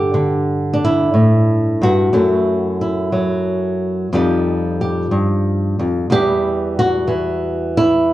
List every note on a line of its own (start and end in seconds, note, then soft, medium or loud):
0.00 1.80 G2 medium
0.00 0.13 D3 medium
0.00 2.10 B3 soft
0.00 0.72 D4 soft
0.00 0.83 G4 medium
0.14 1.13 D3 medium
0.73 1.82 D4 medium
0.84 2.13 E4 medium
1.14 1.82 A2 medium
1.82 2.12 G2 medium
1.82 4.12 F#4 medium
2.13 4.07 F#2 medium
2.13 3.11 F#3 soft
2.13 4.08 A3 soft
2.13 2.80 E4 soft
2.81 4.11 E4 soft
3.12 4.07 F#3 medium
4.13 5.11 F2 medium
4.13 6.06 F3 soft
4.13 6.11 G3 soft
4.13 6.07 D#4 soft
4.13 4.81 G4 medium
4.81 6.12 G4 medium
5.11 5.79 G2 medium
5.79 6.09 F2 medium
6.10 8.13 E2 medium
6.10 7.07 E3 soft
6.10 8.13 G3 soft
6.10 6.78 G4 loud
6.79 7.77 F#4 medium
7.07 8.13 E3 medium
7.77 8.13 E4 medium